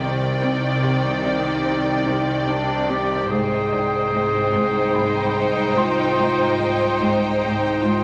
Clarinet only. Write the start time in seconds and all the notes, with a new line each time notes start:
Already playing: G4
0.85 D#4
2.48 D4
2.90 G4
3.30 G#4
5.77 F4
7.41 D#4
7.82 F4